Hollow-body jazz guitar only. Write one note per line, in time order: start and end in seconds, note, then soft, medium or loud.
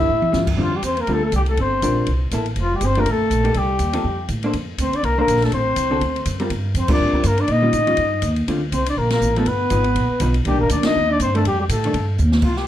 0.32 0.46 G3 soft
0.32 0.46 C#4 medium
0.32 0.47 F4 medium
0.57 0.71 D3 medium
0.57 0.71 G3 medium
0.57 0.71 C4 medium
0.57 0.71 F4 medium
1.08 1.21 D3 soft
1.08 1.21 G3 soft
1.08 1.21 C4 medium
1.08 1.21 F4 medium
1.83 2.07 G3 medium
1.83 2.07 D4 medium
1.83 2.07 F4 medium
1.83 2.08 A#4 medium
2.33 2.45 A#3 medium
2.33 2.45 E4 medium
2.33 2.46 A4 medium
2.97 3.06 F3 medium
2.97 3.06 A3 medium
2.97 3.06 D4 medium
2.97 3.06 G4 medium
3.44 3.54 A#3 medium
3.44 3.54 D#4 medium
3.44 3.54 G4 medium
3.93 4.03 F3 medium
3.93 4.03 C4 medium
3.93 4.03 D#4 medium
3.93 4.04 A4 medium
4.44 4.53 A#3 medium
4.44 4.53 D4 medium
4.44 4.54 A4 medium
4.44 4.54 C5 medium
5.18 5.51 A#3 medium
5.18 5.51 D4 medium
5.18 5.51 A4 medium
5.18 5.51 C5 medium
5.91 6.00 D3 medium
5.91 6.00 C4 medium
5.91 6.01 F#4 medium
5.91 6.01 A4 medium
6.40 6.50 G3 medium
6.40 6.50 C4 medium
6.40 6.50 F4 medium
6.40 6.50 A#4 medium
6.89 7.12 G3 medium
6.89 7.13 C4 medium
6.89 7.13 F4 medium
6.89 7.13 A#4 medium
7.13 7.23 G3 medium
7.13 7.24 C4 medium
7.13 7.24 F4 medium
7.13 7.24 A#4 medium
7.62 7.72 D#3 medium
7.62 7.72 G3 medium
7.62 7.73 C#4 medium
7.62 7.73 F4 medium
7.86 7.97 D#3 medium
7.86 7.97 G3 medium
7.86 7.97 C#4 medium
7.86 7.97 F4 medium
8.48 8.61 D3 medium
8.48 8.61 A3 medium
8.48 8.61 C4 medium
8.48 8.61 F4 medium
9.37 9.46 F3 medium
9.37 9.46 B3 medium
9.37 9.47 D#4 medium
9.71 9.84 F3 medium
9.71 9.84 B3 medium
9.71 9.85 D#4 medium
10.21 10.34 F3 medium
10.21 10.34 B3 medium
10.21 10.34 D#4 medium
10.47 10.82 D#3 medium
10.47 10.82 A#3 medium
10.47 10.83 D4 medium
10.85 10.94 D#3 medium
10.85 10.94 A#3 medium
10.85 10.94 D4 medium
11.35 11.44 D#3 medium
11.35 11.44 A3 medium
11.35 11.44 D4 medium
11.85 11.93 D#3 medium
11.85 11.94 A3 medium
11.85 11.94 D4 medium